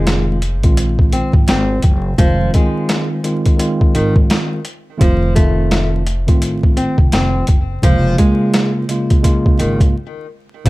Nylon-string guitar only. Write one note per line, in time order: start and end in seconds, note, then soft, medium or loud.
0.00 0.24 G#3 medium
1.13 1.32 C4 medium
1.49 1.80 C4 loud
2.18 2.50 F3 loud
2.55 3.07 G#3 medium
3.95 4.14 D#3 medium
5.01 5.33 F3 loud
5.36 5.89 A3 medium
6.77 6.96 C4 medium
7.13 7.45 C4 medium
7.84 8.15 F3 loud
8.18 8.71 G#3 medium
9.59 9.78 D#3 medium